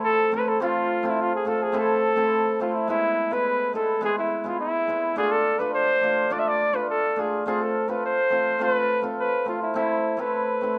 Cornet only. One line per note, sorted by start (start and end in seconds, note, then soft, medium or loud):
0.04 0.36 A4 loud
0.34 0.50 B4 medium
0.48 0.63 A4 medium
0.61 1.07 F4 loud
1.06 1.23 E4 medium
1.21 1.34 F4 medium
1.36 1.49 G#4 medium
1.48 1.64 A4 medium
1.63 1.81 G#4 medium
1.79 2.61 A4 loud
2.62 2.76 F4 medium
2.75 2.89 E4 medium
2.90 3.35 E4 medium
3.33 3.75 B4 medium
3.75 4.01 A4 medium
4.04 4.17 G#4 medium
4.18 4.49 E4 medium
4.47 4.60 F4 medium
4.60 5.13 E4 medium
5.18 5.33 G#4 loud
5.32 5.60 A4 loud
5.59 5.74 B4 medium
5.74 6.34 C5 loud
6.32 6.40 D5 medium
6.39 6.50 E5 medium
6.48 6.77 D5 loud
6.76 6.90 B4 medium
6.90 7.21 A4 medium
7.20 7.46 G#4 medium
7.47 7.63 G#4 medium
7.62 7.91 A4 medium
7.89 8.03 B4 medium
8.06 8.64 C5 medium
8.63 9.05 B4 loud
9.20 9.45 B4 medium
9.49 9.61 F4 medium
9.62 9.75 E4 medium
9.76 10.22 E4 medium
10.21 10.79 B4 medium